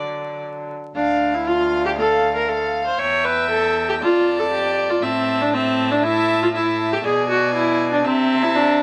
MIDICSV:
0, 0, Header, 1, 5, 480
1, 0, Start_track
1, 0, Key_signature, -1, "minor"
1, 0, Tempo, 528634
1, 867, Time_signature, 4, 2, 24, 8
1, 1333, Tempo, 507614
1, 6133, Tempo, 498339
1, 8331, End_track
2, 0, Start_track
2, 0, Title_t, "Violin"
2, 0, Program_c, 0, 40
2, 0, Note_on_c, 0, 74, 79
2, 382, Note_off_c, 0, 74, 0
2, 872, Note_on_c, 0, 77, 87
2, 1304, Note_off_c, 0, 77, 0
2, 1335, Note_on_c, 0, 77, 85
2, 1803, Note_off_c, 0, 77, 0
2, 1819, Note_on_c, 0, 77, 87
2, 2286, Note_off_c, 0, 77, 0
2, 2292, Note_on_c, 0, 77, 83
2, 2762, Note_off_c, 0, 77, 0
2, 2779, Note_on_c, 0, 79, 90
2, 3746, Note_on_c, 0, 81, 104
2, 3760, Note_off_c, 0, 79, 0
2, 4696, Note_off_c, 0, 81, 0
2, 4702, Note_on_c, 0, 81, 94
2, 5170, Note_off_c, 0, 81, 0
2, 5184, Note_on_c, 0, 81, 92
2, 5649, Note_off_c, 0, 81, 0
2, 5660, Note_on_c, 0, 81, 104
2, 6128, Note_off_c, 0, 81, 0
2, 6138, Note_on_c, 0, 81, 89
2, 6616, Note_on_c, 0, 80, 91
2, 6630, Note_off_c, 0, 81, 0
2, 7590, Note_on_c, 0, 81, 95
2, 7604, Note_off_c, 0, 80, 0
2, 8331, Note_off_c, 0, 81, 0
2, 8331, End_track
3, 0, Start_track
3, 0, Title_t, "Violin"
3, 0, Program_c, 1, 40
3, 0, Note_on_c, 1, 62, 73
3, 361, Note_off_c, 1, 62, 0
3, 873, Note_on_c, 1, 77, 82
3, 1304, Note_off_c, 1, 77, 0
3, 1339, Note_on_c, 1, 77, 90
3, 1805, Note_off_c, 1, 77, 0
3, 1815, Note_on_c, 1, 77, 91
3, 2284, Note_off_c, 1, 77, 0
3, 2295, Note_on_c, 1, 77, 81
3, 2769, Note_on_c, 1, 76, 101
3, 2783, Note_off_c, 1, 77, 0
3, 3733, Note_off_c, 1, 76, 0
3, 3739, Note_on_c, 1, 74, 110
3, 4696, Note_on_c, 1, 76, 101
3, 4710, Note_off_c, 1, 74, 0
3, 5177, Note_off_c, 1, 76, 0
3, 5185, Note_on_c, 1, 76, 93
3, 5649, Note_off_c, 1, 76, 0
3, 5653, Note_on_c, 1, 76, 113
3, 6124, Note_off_c, 1, 76, 0
3, 6139, Note_on_c, 1, 76, 90
3, 6613, Note_on_c, 1, 74, 98
3, 6628, Note_off_c, 1, 76, 0
3, 7577, Note_on_c, 1, 76, 108
3, 7592, Note_off_c, 1, 74, 0
3, 8331, Note_off_c, 1, 76, 0
3, 8331, End_track
4, 0, Start_track
4, 0, Title_t, "Viola"
4, 0, Program_c, 2, 41
4, 0, Note_on_c, 2, 54, 74
4, 652, Note_off_c, 2, 54, 0
4, 862, Note_on_c, 2, 62, 106
4, 1219, Note_on_c, 2, 64, 111
4, 1232, Note_off_c, 2, 62, 0
4, 1333, Note_on_c, 2, 65, 126
4, 1347, Note_off_c, 2, 64, 0
4, 1690, Note_off_c, 2, 65, 0
4, 1696, Note_on_c, 2, 67, 120
4, 1743, Note_off_c, 2, 67, 0
4, 1816, Note_on_c, 2, 69, 121
4, 2167, Note_off_c, 2, 69, 0
4, 2175, Note_on_c, 2, 70, 105
4, 2293, Note_on_c, 2, 69, 112
4, 2307, Note_off_c, 2, 70, 0
4, 2647, Note_off_c, 2, 69, 0
4, 2653, Note_on_c, 2, 72, 106
4, 2769, Note_on_c, 2, 73, 116
4, 2784, Note_off_c, 2, 72, 0
4, 3012, Note_on_c, 2, 71, 116
4, 3027, Note_off_c, 2, 73, 0
4, 3253, Note_off_c, 2, 71, 0
4, 3259, Note_on_c, 2, 69, 121
4, 3613, Note_off_c, 2, 69, 0
4, 3624, Note_on_c, 2, 67, 109
4, 3670, Note_off_c, 2, 67, 0
4, 3742, Note_on_c, 2, 65, 127
4, 4097, Note_on_c, 2, 69, 106
4, 4111, Note_off_c, 2, 65, 0
4, 4210, Note_off_c, 2, 69, 0
4, 4216, Note_on_c, 2, 67, 115
4, 4580, Note_on_c, 2, 65, 108
4, 4594, Note_off_c, 2, 67, 0
4, 4700, Note_on_c, 2, 60, 120
4, 4714, Note_off_c, 2, 65, 0
4, 5064, Note_on_c, 2, 62, 115
4, 5078, Note_off_c, 2, 60, 0
4, 5180, Note_on_c, 2, 60, 127
4, 5194, Note_off_c, 2, 62, 0
4, 5534, Note_on_c, 2, 62, 117
4, 5549, Note_off_c, 2, 60, 0
4, 5652, Note_on_c, 2, 64, 127
4, 5666, Note_off_c, 2, 62, 0
4, 6011, Note_off_c, 2, 64, 0
4, 6016, Note_on_c, 2, 65, 109
4, 6064, Note_off_c, 2, 65, 0
4, 6132, Note_on_c, 2, 64, 125
4, 6488, Note_off_c, 2, 64, 0
4, 6498, Note_on_c, 2, 67, 121
4, 6546, Note_off_c, 2, 67, 0
4, 6613, Note_on_c, 2, 68, 127
4, 6851, Note_off_c, 2, 68, 0
4, 6860, Note_on_c, 2, 66, 118
4, 7090, Note_off_c, 2, 66, 0
4, 7096, Note_on_c, 2, 64, 127
4, 7450, Note_off_c, 2, 64, 0
4, 7462, Note_on_c, 2, 62, 114
4, 7579, Note_off_c, 2, 62, 0
4, 7585, Note_on_c, 2, 60, 127
4, 7948, Note_on_c, 2, 64, 122
4, 7963, Note_off_c, 2, 60, 0
4, 8066, Note_on_c, 2, 62, 126
4, 8080, Note_off_c, 2, 64, 0
4, 8331, Note_off_c, 2, 62, 0
4, 8331, End_track
5, 0, Start_track
5, 0, Title_t, "Cello"
5, 0, Program_c, 3, 42
5, 0, Note_on_c, 3, 50, 77
5, 644, Note_off_c, 3, 50, 0
5, 868, Note_on_c, 3, 38, 95
5, 2734, Note_off_c, 3, 38, 0
5, 2773, Note_on_c, 3, 40, 92
5, 3742, Note_on_c, 3, 41, 90
5, 3756, Note_off_c, 3, 40, 0
5, 4690, Note_off_c, 3, 41, 0
5, 4695, Note_on_c, 3, 45, 101
5, 6578, Note_off_c, 3, 45, 0
5, 6616, Note_on_c, 3, 47, 104
5, 7584, Note_on_c, 3, 48, 102
5, 7599, Note_off_c, 3, 47, 0
5, 8331, Note_off_c, 3, 48, 0
5, 8331, End_track
0, 0, End_of_file